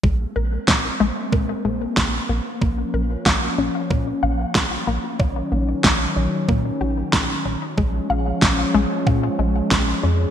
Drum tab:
SD |--o---o-|--o---o-|--o---o-|--o---o-|
BD |o-o-o-o-|o-o-o-o-|o-o-o-o-|o-o-o-o-|